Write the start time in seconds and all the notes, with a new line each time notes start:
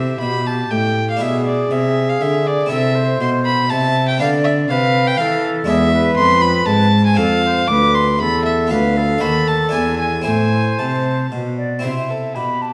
Already playing: C3 C4 E4 G4 E5
0.20 B2 B5
0.46 A5
0.70 A2 G5
1.11 F5
1.17 B2 D4 E4 G#4
1.21 B2 G#4 E5
1.46 D5
1.71 C3 E5
2.09 F5
2.21 D3 E5
2.47 D5
2.66 C4 E4 A4
2.71 C3 E5
2.95 C5
3.20 B2 C6
3.46 B5
3.70 C3 E5 A5
4.08 G5
4.18 D3 B3 D4 B4 D5 F5
4.22 D3
4.44 E5
4.69 C3 B4 F5
5.07 G5
5.17 E3 A4 F5
5.64 E2 G#3 D4 B4 E5
5.69 E2 G#4
5.93 B4
6.17 F2 C6
6.42 B5
6.66 G#2 A5
7.06 G#5
7.14 F2 C4 F4 A4 F5
7.18 F2
7.45 C5
7.67 D2 B4 D6
7.94 C6
8.19 E2 A4 B5
8.46 E5
8.67 D2 B3 F4 B4 F5
8.71 D2 B4
8.97 A4
9.18 D#4 F#4 C5 B5
9.23 D#2
9.47 A5
9.69 D4 E4 B4 G#5
9.73 E2
9.99 G#5
10.22 C4 E4 C5 G#5
10.26 A2 C5
10.78 C3 A5
11.32 B2
11.58 D5
11.79 C4 E4 C5
11.84 C3 C5 E5
12.10 A4
12.35 B2 G4 B5
12.62 A5